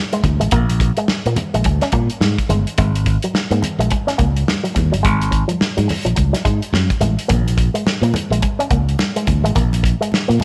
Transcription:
0.12 G#3, closed hi-hat, muted conga
0.23 D2, muted clean electric guitar stroke, kick, closed hi-hat, high conga, low conga
0.40 A1 G#3, closed hi-hat
0.51 A#1 A#3, kick, closed hi-hat, low conga
0.70 closed hi-hat, muted conga
0.80 muted clean electric guitar stroke, kick, closed hi-hat
0.97 G#3, closed hi-hat
1.08 muted fingered electric bass stroke, snare, muted conga
1.26 A#2 A#3, closed hi-hat, muted conga
1.36 muted clean electric guitar stroke, closed hi-hat, high conga, low conga
1.54 A#1 G#3, closed hi-hat
1.64 D2, muted clean electric guitar stroke, kick, closed hi-hat, muted conga, high conga
1.81 C#4, snare, closed hi-hat, muted conga
1.92 A#2 A#3, kick, closed hi-hat, high conga
2.10 closed hi-hat
2.20 G#2, snare, high conga
2.38 kick, closed hi-hat
2.49 G1 G#3, closed hi-hat, high conga, low conga
2.67 closed hi-hat
2.78 G#1 G#3, kick, closed hi-hat, low conga
2.95 closed hi-hat
3.06 muted clean electric guitar stroke, kick, closed hi-hat
3.22 F#3, closed hi-hat
3.34 muted fingered electric bass stroke, snare, muted conga
3.51 G#2 A#3, closed hi-hat, muted conga
3.62 muted clean electric guitar stroke, closed hi-hat, high conga, low conga
3.79 A#1 G#3, closed hi-hat
3.91 muted clean electric guitar stroke, kick, closed hi-hat, high conga
4.07 C#4, snare, closed hi-hat, muted conga
4.18 C#2 A#3, kick, closed hi-hat, high conga
4.37 closed hi-hat
4.48 snare, muted conga, high conga
4.64 F#3, closed hi-hat
4.75 D#2, muted clean electric guitar stroke, kick, closed hi-hat, high conga, low conga
4.92 G1 F#3, closed hi-hat
5.03 G#1 G#3, kick, closed hi-hat, muted conga, low conga
5.22 closed hi-hat, muted conga
5.31 muted clean electric guitar stroke, kick, closed hi-hat
5.48 F3, closed hi-hat, high conga
5.61 muted fingered electric bass stroke, snare
5.77 G#2 F#3, closed hi-hat
5.88 muted clean electric guitar stroke, open hi-hat, high conga, low conga
6.05 A#1 F3, closed hi-hat
6.16 C#2, muted clean electric guitar stroke, kick, closed hi-hat, high conga
6.33 F#3, snare, closed hi-hat, muted conga
6.45 G#2 G#3, kick, closed hi-hat, high conga
6.62 closed hi-hat
6.73 F#2, snare, muted conga, high conga
6.90 kick, closed hi-hat, muted conga
7.00 A1 G#3, closed hi-hat, high conga, low conga
7.19 closed hi-hat
7.28 A#1 A#3, kick, closed hi-hat, low conga
7.48 closed hi-hat
7.57 muted clean electric guitar stroke, kick, closed hi-hat
7.74 G#3, closed hi-hat
7.86 muted fingered electric bass stroke, snare, muted conga
8.02 A#2 A#3, closed hi-hat, muted conga
8.14 muted clean electric guitar stroke, closed hi-hat, high conga, low conga
8.30 A#1 G#3, closed hi-hat
8.42 muted clean electric guitar stroke, kick, closed hi-hat, muted conga, high conga
8.59 C#4, closed hi-hat, muted conga
8.71 C#2 A#3, kick, closed hi-hat, high conga
8.89 closed hi-hat
8.99 snare, muted conga, high conga
9.16 G#3, closed hi-hat
9.27 D2, muted clean electric guitar stroke, kick, closed hi-hat, high conga, low conga
9.44 A1 G#3, closed hi-hat
9.55 A#1 A#3, kick, closed hi-hat, muted conga, low conga
9.73 closed hi-hat, muted conga
9.83 muted clean electric guitar stroke, kick, closed hi-hat
10.01 G#3, closed hi-hat
10.12 muted fingered electric bass stroke, snare, muted conga
10.28 A#2 A#3, closed hi-hat, muted conga
10.40 muted clean electric guitar stroke, high conga, low conga

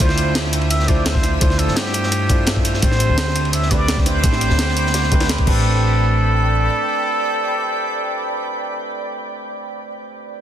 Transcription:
Already playing: E6
0.00 D2 A3 D4 E4 F4 C5, kick, closed hi-hat, ride
0.09 snare
0.18 closed hi-hat, ride
0.35 snare, closed hi-hat, ride
0.45 snare
0.53 closed hi-hat, ride
0.62 ride
0.70 E5, closed hi-hat, ride
0.79 snare
0.88 A3 D4 E4 F4 C5 D5, kick, closed hi-hat, ride
1.06 C5, snare, closed hi-hat, ride
1.15 kick, snare
1.23 snare, closed hi-hat, ride
1.40 D2 A3 D4 E4 F4 C5, kick, closed hi-hat, ride
1.50 snare
1.59 A4, closed hi-hat, ride
1.68 G2, snare
1.76 G4, snare, closed hi-hat, ride
1.85 snare
1.94 closed hi-hat, ride
2.03 snare
2.12 closed hi-hat, ride
2.29 A3 D4 E4 F4 C5, kick, closed hi-hat, ride
2.46 snare, closed hi-hat, ride
2.56 kick
2.65 closed hi-hat, ride
2.74 snare
2.82 A1 A3 C4 D4 G4 C5 G5 B5 D6, kick, closed hi-hat, ride
2.92 snare
3.00 closed hi-hat, ride
3.09 D2
3.18 snare, closed hi-hat, ride
3.27 snare
3.36 closed hi-hat, ride
3.45 ride
3.53 E5, closed hi-hat, ride
3.62 snare
3.70 A3 C4 D4 G4 B4 D5, kick, closed hi-hat, ride
3.88 snare, closed hi-hat, ride
3.97 kick, snare
4.06 C5, snare, closed hi-hat, ride
4.23 A1 A3 C4 D4 G4 C5, kick, closed hi-hat, ride
4.32 snare
4.41 closed hi-hat, ride
4.50 D2, snare
4.59 snare, closed hi-hat, ride
4.68 snare
4.77 closed hi-hat, ride
4.86 snare
4.94 snare, closed hi-hat, ride
5.03 snare
5.11 A3 C4 D4 G4 B4, kick, closed hi-hat, ride
5.20 snare, ride
5.29 snare, closed hi-hat
5.38 kick, ride
5.46 A1 A3 C4 D4 G4 A4 B4 D5 G5 B5, kick, crash

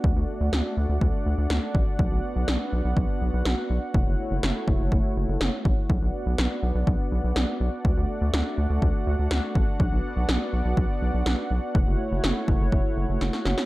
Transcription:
Already playing: D4 F#4 D5 F#5
0.04 D2 A3, kick
0.16 D2
0.41 D2
0.53 D2, snare
0.77 D2
0.89 D2
1.01 D2, kick
1.26 D2
1.38 D2
1.50 D2, snare
1.75 A1, kick
1.99 B1 B3 F#4, kick
2.11 B1
2.36 B1
2.48 B1, snare
2.73 B1
2.85 B1
2.97 B1, kick
3.22 B1
3.34 B1
3.45 B1, snare
3.70 B1
3.94 F#1 A3 E4 C#5, kick
4.07 F#1
4.31 F#1
4.43 F#1, snare
4.68 F#1, kick
4.80 F#1
4.92 F#1, kick
5.16 F#1
5.28 F#1
5.41 F#1, snare
5.65 A1, kick
5.89 B1 B3 D4 F#4 D5 F#5, kick
6.02 B1
6.26 B1
6.38 B1, snare
6.63 B1
6.75 B1
6.87 B1, kick
7.12 B1
7.24 B1
7.36 B1, snare
7.60 B1
7.85 D2 A3, kick
7.97 D2
8.21 D2
8.33 D2, snare
8.58 D2
8.70 D2
8.82 D2, kick
9.07 D2
9.19 D2
9.31 D2, snare
9.55 A1, kick
9.80 B1 B3 D5, kick
9.92 B1
10.16 B1
10.29 B1, snare
10.53 B1
10.65 B1
10.77 B1, kick
11.02 B1
11.14 B1
11.26 B1, snare
11.51 B1
11.75 F#1 A3 E4 C#5, kick
11.87 F#1
12.12 F#1
12.24 F#1, snare
12.48 F#1, kick
12.61 F#1
12.72 F#1, kick
12.97 F#1
13.09 F#1
13.21 F#1, snare
13.33 snare
13.45 F#1, snare
13.58 snare

